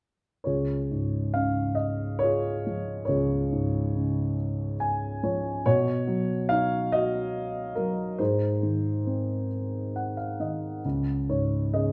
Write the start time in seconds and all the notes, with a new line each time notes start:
0.44 C#2 F4 G#4 C#5
0.91 G#2
1.34 C#3 F5
1.75 D#5
2.19 C#5
2.23 F4 G#4
2.67 F3
3.05 C#2 F4 G#4 C#5
3.52 G#2
3.96 C#3
4.80 G#5
5.23 F3 C#5
5.66 B2 F#4 C#5
6.07 F#3
6.49 D#4 F5
6.92 F#4 D#5
7.75 F#3 A#4
8.18 G#2 D#4 G#4 C5
8.63 D#3
9.07 C4
9.96 F#5
10.17 F5
10.40 D#3 D#5
10.85 C#2
11.29 G#2 C#5
11.73 C#3 G#4 D#5